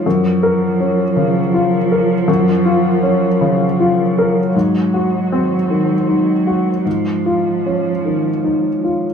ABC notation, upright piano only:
X:1
M:6/8
L:1/8
Q:3/8=53
K:F#
V:1 name="Upright piano"
F,, A C C, E A | F,, E C C, E A | G,, F ^B, D, D F | G,, E C D, D E |]